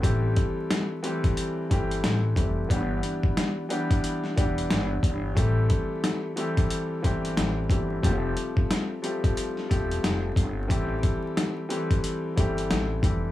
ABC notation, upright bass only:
X:1
M:4/4
L:1/8
Q:"Swing 16ths" 1/4=90
K:Am
V:1 name="Upright bass" clef=bass
A,,, z4 G,,, A,,, F,,, | G,,, z4 E,,, G,,, G,,, | A,,, z4 G,,, A,,, G,,, | F,,, z4 E,,, F,,, G,,, |
A,,, z4 G,,, A,,, F,,, |]